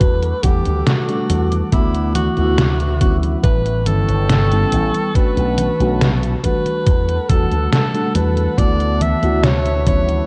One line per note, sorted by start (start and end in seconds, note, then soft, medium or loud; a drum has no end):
0.00 0.32 E2 loud
0.00 0.39 G3 medium
0.00 0.39 A3 medium
0.00 0.39 D4 medium
0.00 0.40 F#4 medium
0.00 1.71 A4 medium
0.00 0.45 B4 loud
0.00 3.40 F#5 medium
0.00 3.40 D6 medium
0.00 kick loud
0.00 closed hi-hat medium
0.00 high conga soft
0.23 closed hi-hat soft
0.43 0.60 E2 medium
0.43 1.03 G3 medium
0.43 1.04 A3 medium
0.43 1.04 D4 medium
0.43 0.88 G4 medium
0.43 1.04 F#5 medium
0.43 kick loud
0.43 closed hi-hat loud
0.43 high conga medium
0.65 0.81 D2 medium
0.65 closed hi-hat soft
0.65 high conga soft
0.87 1.52 F#4 medium
0.87 snare loud
0.87 closed hi-hat medium
0.87 high conga soft
1.08 1.67 G3 medium
1.08 1.68 A3 medium
1.08 1.68 D4 medium
1.08 1.68 F#4 medium
1.08 closed hi-hat soft
1.30 1.61 E2 medium
1.30 closed hi-hat loud
1.30 high conga medium
1.52 closed hi-hat soft
1.52 high conga soft
1.72 2.27 D2 loud
1.72 2.32 A3 medium
1.72 2.32 B3 medium
1.72 2.12 E4 loud
1.72 2.33 E4 medium
1.72 2.33 F#4 loud
1.72 5.12 B4 medium
1.72 3.42 E5 medium
1.72 kick loud
1.72 closed hi-hat medium
1.72 high conga soft
1.94 closed hi-hat soft
2.15 2.97 F#4 loud
2.15 closed hi-hat loud
2.15 high conga medium
2.37 3.35 D2 medium
2.37 2.62 A3 loud
2.37 2.62 B3 medium
2.37 2.62 E4 medium
2.37 2.63 F#4 loud
2.37 closed hi-hat soft
2.37 high conga soft
2.58 snare loud
2.58 closed hi-hat medium
2.58 high conga soft
2.80 closed hi-hat soft
3.00 3.81 G3 medium
3.00 3.82 B3 medium
3.00 3.82 C#4 medium
3.00 3.82 E4 medium
3.00 3.17 F#4 medium
3.00 kick loud
3.00 closed hi-hat medium
3.00 high conga medium
3.23 closed hi-hat soft
3.23 high conga soft
3.44 3.87 A1 loud
3.44 3.88 B4 loud
3.44 5.14 G5 medium
3.44 5.14 A5 medium
3.44 6.41 C#6 medium
3.44 kick loud
3.44 closed hi-hat medium
3.44 high conga soft
3.66 closed hi-hat soft
3.86 4.03 G1 medium
3.86 4.46 G3 medium
3.86 4.47 B3 medium
3.86 4.47 C#4 medium
3.86 4.47 E4 medium
3.86 5.17 A4 loud
3.86 closed hi-hat loud
3.86 high conga medium
4.09 4.63 G1 medium
4.09 closed hi-hat soft
4.09 high conga soft
4.29 snare loud
4.29 closed hi-hat medium
4.29 high conga soft
4.51 5.10 G3 medium
4.51 5.10 B3 medium
4.51 5.11 C#4 medium
4.51 5.11 E4 medium
4.51 closed hi-hat soft
4.72 4.88 A1 loud
4.72 closed hi-hat medium
4.72 high conga medium
4.94 closed hi-hat soft
4.94 high conga soft
5.15 5.75 A3 medium
5.15 5.75 C#4 medium
5.15 5.75 D4 medium
5.15 5.75 F#4 loud
5.15 6.43 B4 medium
5.15 6.17 B4 loud
5.15 6.42 A5 medium
5.15 muted slap bass stroke soft
5.15 kick loud
5.15 closed hi-hat medium
5.15 high conga soft
5.37 5.67 B1 medium
5.37 closed hi-hat soft
5.58 closed hi-hat loud
5.58 high conga medium
5.80 6.34 B1 medium
5.80 6.05 A3 loud
5.80 6.05 C#4 medium
5.80 6.05 D4 medium
5.80 6.06 F#4 loud
5.80 closed hi-hat soft
5.80 high conga soft
6.01 snare loud
6.01 closed hi-hat medium
6.01 high conga soft
6.23 closed hi-hat soft
6.43 7.25 G3 medium
6.43 7.25 A3 medium
6.43 7.25 D4 medium
6.43 7.25 F#4 medium
6.43 8.56 A4 medium
6.43 7.31 B4 loud
6.43 10.26 F#5 medium
6.43 10.26 A5 loud
6.43 kick medium
6.43 closed hi-hat medium
6.43 high conga medium
6.66 closed hi-hat soft
6.66 high conga soft
6.86 7.17 E2 loud
6.86 kick loud
6.86 closed hi-hat medium
6.86 high conga soft
7.09 closed hi-hat soft
7.29 7.45 E2 medium
7.29 7.89 G3 medium
7.29 7.89 A3 medium
7.29 7.90 D4 medium
7.29 7.90 F#4 medium
7.29 7.71 A4 loud
7.29 kick loud
7.29 closed hi-hat loud
7.29 high conga medium
7.51 7.66 D2 medium
7.51 closed hi-hat soft
7.51 high conga soft
7.72 8.16 A4 loud
7.72 snare loud
7.72 closed hi-hat medium
7.72 high conga soft
7.94 8.53 G3 medium
7.94 8.53 A3 medium
7.94 8.53 D4 medium
7.94 8.54 F#4 medium
7.94 closed hi-hat soft
8.15 8.46 E2 medium
8.15 8.60 B4 loud
8.15 closed hi-hat medium
8.15 high conga medium
8.37 closed hi-hat soft
8.37 high conga soft
8.57 9.13 D2 loud
8.57 9.17 A3 medium
8.57 9.18 B3 medium
8.57 9.18 E4 medium
8.57 9.18 F#4 medium
8.57 10.27 B4 medium
8.57 9.03 D5 loud
8.57 10.27 E5 medium
8.57 kick loud
8.57 closed hi-hat medium
8.57 high conga soft
8.80 closed hi-hat soft
9.01 9.46 E5 loud
9.01 closed hi-hat medium
9.01 high conga medium
9.22 10.20 D2 medium
9.22 9.47 A3 medium
9.22 9.48 B3 medium
9.22 9.48 E4 medium
9.22 9.48 F#4 loud
9.22 closed hi-hat soft
9.22 high conga soft
9.43 9.87 C#5 loud
9.43 snare loud
9.43 closed hi-hat medium
9.43 high conga soft
9.66 closed hi-hat soft
9.86 10.27 G3 medium
9.86 10.27 B3 medium
9.86 10.27 C#4 medium
9.86 10.27 E4 medium
9.86 10.27 C#5 loud
9.86 kick loud
9.86 closed hi-hat medium
9.86 high conga medium
10.09 closed hi-hat soft
10.09 high conga soft